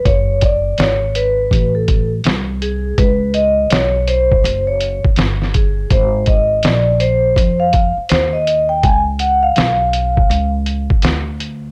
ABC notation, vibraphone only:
X:1
M:4/4
L:1/16
Q:"Swing 16ths" 1/4=82
K:F#m
V:1 name="Vibraphone"
c2 d2 c2 B3 A2 z3 G2 | B2 ^d2 c2 =c3 ^c2 z3 G2 | =c2 ^d2 =d2 c3 ^e2 z c ^d2 =g | g2 f ^e6 z6 z |]